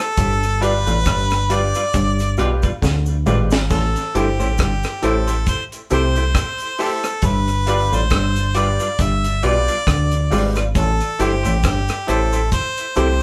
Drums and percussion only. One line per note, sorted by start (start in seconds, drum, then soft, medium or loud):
0.00 cross-stick medium
0.17 kick loud
0.17 closed hi-hat loud
0.17 cabasa medium
0.43 closed hi-hat soft
0.43 cabasa medium
0.62 closed hi-hat medium
0.62 cabasa medium
0.87 closed hi-hat soft
0.87 cabasa medium
1.05 kick loud
1.05 cross-stick loud
1.05 closed hi-hat loud
1.05 cabasa medium
1.30 cross-stick medium
1.30 closed hi-hat soft
1.30 cabasa medium
1.50 closed hi-hat medium
1.50 cabasa soft
1.74 closed hi-hat soft
1.74 cabasa medium
1.93 kick loud
1.93 closed hi-hat medium
1.93 cabasa medium
2.19 closed hi-hat medium
2.19 cabasa medium
2.37 closed hi-hat medium
2.37 cabasa soft
2.62 kick loud
2.62 closed hi-hat soft
2.62 cabasa medium
2.82 kick loud
2.82 snare medium
2.82 cabasa medium
3.06 cabasa medium
3.26 mid tom medium
3.26 cabasa medium
3.51 snare medium
3.51 cabasa medium
3.70 kick loud
3.70 splash medium
3.70 cabasa medium
3.96 closed hi-hat soft
3.96 cabasa soft
4.15 closed hi-hat medium
4.15 cabasa medium
4.40 cabasa medium
4.58 kick loud
4.58 cross-stick loud
4.58 closed hi-hat medium
4.58 cabasa medium
4.83 cross-stick medium
4.83 closed hi-hat soft
4.83 cabasa soft
5.03 closed hi-hat medium
5.03 cabasa medium
5.28 closed hi-hat soft
5.28 cabasa medium
5.46 kick loud
5.46 closed hi-hat medium
5.46 cabasa medium
5.72 closed hi-hat medium
5.72 cabasa medium
5.90 closed hi-hat medium
5.90 cabasa soft
6.16 closed hi-hat soft
6.16 cabasa medium
6.35 kick loud
6.35 cross-stick loud
6.35 closed hi-hat loud
6.35 cabasa medium
6.58 closed hi-hat medium
6.58 cabasa medium
6.78 open hi-hat medium
6.78 cabasa soft
7.03 cross-stick medium
7.03 closed hi-hat soft
7.03 cabasa medium
7.22 kick loud
7.22 closed hi-hat medium
7.22 cabasa medium
7.48 closed hi-hat soft
7.48 cabasa medium
7.67 closed hi-hat medium
7.67 cabasa medium
7.93 cabasa medium
8.10 kick loud
8.10 cross-stick loud
8.10 closed hi-hat medium
8.10 cabasa medium
8.36 closed hi-hat soft
8.36 cabasa soft
8.55 closed hi-hat medium
8.55 cabasa medium
8.79 closed hi-hat soft
8.79 cabasa medium
8.99 kick loud
8.99 closed hi-hat loud
8.99 cabasa medium
9.24 closed hi-hat medium
9.24 cabasa medium
9.42 closed hi-hat medium
9.42 cabasa soft
9.68 closed hi-hat soft
9.68 cabasa medium
9.87 kick loud
9.87 cross-stick loud
9.87 closed hi-hat loud
9.87 cabasa medium
10.11 closed hi-hat soft
10.11 cabasa soft
10.32 open hi-hat medium
10.32 cabasa medium
10.55 cross-stick medium
10.55 closed hi-hat soft
10.55 cabasa medium
10.75 kick loud
10.75 closed hi-hat medium
10.75 cabasa medium
11.01 closed hi-hat soft
11.01 cabasa medium
11.20 closed hi-hat medium
11.20 cabasa medium
11.45 closed hi-hat soft
11.45 cabasa medium
11.63 kick loud
11.63 cross-stick loud
11.63 closed hi-hat medium
11.63 cabasa medium
11.88 cross-stick medium
11.88 closed hi-hat soft
11.88 cabasa medium
12.08 closed hi-hat medium
12.08 cabasa medium
12.33 closed hi-hat soft
12.33 cabasa medium
12.51 kick loud
12.51 closed hi-hat medium
12.51 cabasa medium
12.77 closed hi-hat medium
12.77 cabasa medium
12.95 closed hi-hat medium
12.95 cabasa soft